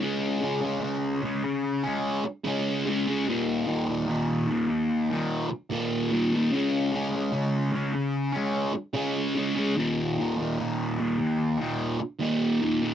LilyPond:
\new Staff \with { instrumentName = "Distorted electric guitar" } { \clef bass \time 4/4 \key des \lydian \tempo 4 = 74 <des aes des'>8 <des aes des'>16 <aes des'>16 <des aes des'>8 <des aes des'>8. <aes des'>8. <des aes des'>8 <des aes des'>16 <aes des'>16 | <ees, bes, ees>8 <ees, bes, ees>16 <bes, ees>16 <ees, bes, ees>8 <ees, bes, ees>8. <bes, ees>8. <ees, bes, ees>8 <ees, bes, ees>16 <bes, ees>16 | <des aes des'>8 <des aes des'>16 <aes des'>16 <des aes des'>8 <des aes des'>8. <aes des'>8. <des aes des'>8 <des aes des'>16 <aes des'>16 | <ees, bes, ees>8 <ees, bes, ees>16 <bes, ees>16 <ees, bes, ees>8 <ees, bes, ees>8. <bes, ees>8. <ees, bes, ees>8 <ees, bes, ees>16 <bes, ees>16 | }